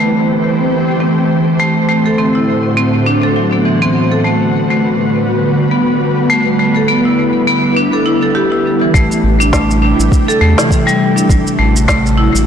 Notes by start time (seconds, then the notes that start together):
Already playing: E3 A3 C4 G4 C5
0.00 A3
1.00 C4
1.59 A3
1.88 A2 D3 A3 F#4
2.06 A4
2.18 C4
2.35 E4
2.77 C4
3.06 D4
3.23 A4
3.36 F#3
3.53 B3
3.65 E3
3.82 C4
4.12 A4
4.23 G3 A3 B3 B4
4.70 A3
5.71 B3
6.30 A3
6.59 A3 E4
6.76 A4
6.88 B3
7.05 E4
7.47 B3
7.77 D4
7.93 A4
8.06 E4
8.23 A4
8.35 G4
8.52 E4
8.81 E3
8.94 A1 C3 G3 A3 E4 G4, kick, shaker
9.12 shaker
9.24 A1
9.40 D4, shaker
9.53 A3, kick, snare, shaker
9.71 shaker
9.82 D4
9.99 A1, shaker
10.12 kick, shaker
10.28 A4, shaker
10.41 E2 A3
10.58 E3, snare, shaker
10.71 kick, shaker
10.87 G3, shaker
11.16 D4, shaker
11.29 A1 F#3 D4 F#4, kick, shaker
11.47 shaker
11.59 A1 A3
11.76 shaker
11.88 A3, kick, snare, shaker
12.06 shaker
12.17 E4
12.35 A1, shaker